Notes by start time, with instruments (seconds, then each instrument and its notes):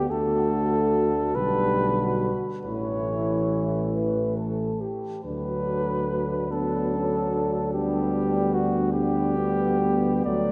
Already playing: euphonium B3, flugelhorn G4
0.10 tuba D2, trombone D3, euphonium A3, french horn section F#4, flugelhorn A4
1.35 tuba B1, trombone D3, euphonium G3, french horn section G4, flugelhorn B4
1.99 french horn section F#4
2.64 tuba A1, trombone E3, euphonium A3, french horn section E4, flugelhorn C#5
3.93 french horn section B4
4.37 french horn section A4
4.80 french horn section G4
5.24 tuba D2, trombone F#3, euphonium A3, french horn section D4, flugelhorn B4
6.50 trombone F#3, euphonium B3, french horn section D4, flugelhorn A4
6.93 euphonium C#4
7.34 euphonium D4
7.73 trombone G3, french horn section B3, flugelhorn G4
8.54 flugelhorn F#4
8.93 trombone G3, euphonium D4, flugelhorn G4
9.36 euphonium B3
9.81 euphonium B3
10.26 tuba D2, trombone F#3, euphonium A3, flugelhorn D5